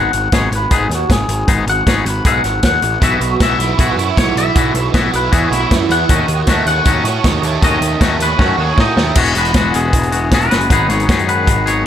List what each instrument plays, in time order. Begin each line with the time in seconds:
Already playing: clean electric guitar G#3 B3 D#4 G#4 F#5
0.13 picked electric bass G#1, muted clean electric guitar stroke, closed hi-hat
0.32 picked electric bass G#1, clean electric guitar G#3 B3 D#4 G#4 C#5, kick, snare, closed hi-hat
0.51 picked electric bass G#1, closed hi-hat
0.55 clean electric guitar B4
0.71 picked electric bass G#1, clean electric guitar G#3 B3 D#4 G#4, kick, closed hi-hat
0.89 picked electric bass D#2, snare, closed hi-hat
0.95 clean electric guitar F#4
1.10 picked electric bass G#1, clean electric guitar G#4, muted clean electric guitar stroke, kick, snare, closed hi-hat
1.28 picked electric bass G#1, muted clean electric guitar stroke, closed hi-hat
1.48 picked electric bass G#1, clean electric guitar G#3 B3 D#4 G#4, kick, closed hi-hat
1.67 picked electric bass G#1, clean electric guitar F#5, muted clean electric guitar stroke, closed hi-hat
1.87 picked electric bass G#1, clean electric guitar G#3 B3 D#4 G#4 C#5, kick, snare, closed hi-hat
2.05 picked electric bass G#1, clean electric guitar B4, closed hi-hat
2.25 picked electric bass B1, clean electric guitar G#3 B3 D#4 G#4 F#5, kick, closed hi-hat
2.44 picked electric bass G#1, snare, closed hi-hat
2.63 picked electric bass D#2, clean electric guitar F#5, muted clean electric guitar stroke, kick, snare, closed hi-hat
2.82 picked electric bass A1, muted clean electric guitar stroke, closed hi-hat
3.02 picked electric bass B1, overdriven electric guitar B2, clean electric guitar E3 B3 E4 F#4 E5, kick, closed hi-hat
3.21 picked electric bass B1, muted clean electric guitar stroke, closed hi-hat
3.40 picked electric bass B1, clean electric guitar E3 B3 E4 F#4 E5, overdriven electric guitar B3, kick, snare, closed hi-hat
3.58 picked electric bass B1, overdriven electric guitar E4, muted clean electric guitar stroke, snare, closed hi-hat
3.79 picked electric bass B1, clean electric guitar E3 B3 E4 F#4, overdriven electric guitar F#4, kick, closed hi-hat
3.96 picked electric bass F#2, overdriven electric guitar E4, closed hi-hat
4.17 picked electric bass B1, overdriven electric guitar E3, clean electric guitar C#5, muted clean electric guitar stroke, kick, snare, closed hi-hat
4.36 picked electric bass B1, overdriven electric guitar B3, clean electric guitar E5, muted clean electric guitar stroke, closed hi-hat
4.55 picked electric bass B1, overdriven electric guitar B2, clean electric guitar E3 B3 E4 F#4, kick, closed hi-hat
4.75 picked electric bass B1, muted clean electric guitar stroke, closed hi-hat
4.94 picked electric bass B1, clean electric guitar E3 B3 E4 F#4, overdriven electric guitar B3, kick, snare, closed hi-hat
5.13 picked electric bass B1, overdriven electric guitar E4, clean electric guitar B4, muted clean electric guitar stroke, closed hi-hat
5.31 picked electric bass E2, clean electric guitar E3 B3 E4 F#4 G#4, overdriven electric guitar F#4, kick, closed hi-hat
5.51 picked electric bass B1, overdriven electric guitar E4, clean electric guitar E4, muted clean electric guitar stroke, snare, closed hi-hat
5.70 picked electric bass F#2, overdriven electric guitar E3, muted clean electric guitar stroke, kick, snare, closed hi-hat
5.89 picked electric bass E2, overdriven electric guitar B3, clean electric guitar F#5, muted clean electric guitar stroke, closed hi-hat
6.09 picked electric bass D#2, clean electric guitar D#3 A3 C#4 F#4, overdriven electric guitar D#3, kick, closed hi-hat
6.28 picked electric bass D#2, muted clean electric guitar stroke, closed hi-hat
6.47 picked electric bass D#2, clean electric guitar D#3 A3 C#4 F#4, overdriven electric guitar A3, kick, snare, closed hi-hat
6.66 picked electric bass D#2, overdriven electric guitar C#4, clean electric guitar F#5, muted clean electric guitar stroke, closed hi-hat
6.85 picked electric bass D#2, clean electric guitar D#3 A3 C#4 F#4 D#5, overdriven electric guitar F#4, kick, closed hi-hat
7.04 picked electric bass A2, overdriven electric guitar C#4, clean electric guitar C#5, muted clean electric guitar stroke, snare, closed hi-hat
7.24 picked electric bass D#2, overdriven electric guitar D#3, muted clean electric guitar stroke, kick, snare, closed hi-hat
7.42 picked electric bass D#2, overdriven electric guitar A3, muted clean electric guitar stroke, closed hi-hat
7.62 picked electric bass D#2, overdriven electric guitar D#3, clean electric guitar D#3 A3 C#4 F#4 D#5, kick, closed hi-hat
7.81 picked electric bass D#2, muted clean electric guitar stroke, closed hi-hat
8.01 picked electric bass D#2, clean electric guitar D#3 A3 C#4 F#4, overdriven electric guitar A3, kick, snare, closed hi-hat
8.19 picked electric bass D#2, overdriven electric guitar C#4, clean electric guitar B4, muted clean electric guitar stroke, snare, closed hi-hat
8.38 picked electric bass F#2, clean electric guitar D#3 A3 C#4 F#4, overdriven electric guitar F#4, kick, snare
8.58 picked electric bass D#2, overdriven electric guitar C#4, clean electric guitar G#4, muted clean electric guitar stroke
8.76 picked electric bass A2, overdriven electric guitar D#3, clean electric guitar D#4, muted clean electric guitar stroke, kick, snare
8.81 clean electric guitar D#5
8.96 picked electric bass D#2, overdriven electric guitar A3, muted clean electric guitar stroke, snare
9.15 picked electric bass E1, clean electric guitar E2 B2 E3 G#3 B3 F#4, kick, crash
9.20 clean electric guitar C#5
9.25 closed hi-hat
9.35 picked electric bass E1, clean electric guitar E3 G#3 B3 F#4 B4, closed hi-hat
9.45 closed hi-hat
9.53 picked electric bass E1, clean electric guitar E2 B2 E3 G#3 B3 F#4, kick, snare, closed hi-hat
9.74 picked electric bass E1, clean electric guitar G#4, closed hi-hat
9.93 picked electric bass E1, kick, closed hi-hat
10.03 closed hi-hat
10.12 clean electric guitar E3 G#3 B3 F#4, closed hi-hat
10.31 picked electric bass E1, clean electric guitar E3 G#3 B3 F#4 B4, kick, snare, closed hi-hat
10.41 closed hi-hat
10.49 picked electric bass F#1, clean electric guitar E3 G#3 B3 F#4, snare, closed hi-hat
10.61 closed hi-hat
10.69 picked electric bass G#1, clean electric guitar G#2 D#3 F#3 B3 D#4 G#4 B4, kick, closed hi-hat
10.89 picked electric bass G#1, clean electric guitar F#3 B3 D#4 G#4 C#5, closed hi-hat
11.00 closed hi-hat
11.08 picked electric bass F#2, clean electric guitar G#2 D#3 F#3 B3 D#4 G#4, kick, snare, closed hi-hat
11.19 closed hi-hat
11.29 clean electric guitar B4, closed hi-hat
11.47 picked electric bass G#1, kick, closed hi-hat
11.66 clean electric guitar F#3 B3 D#4 G#4 C#5, closed hi-hat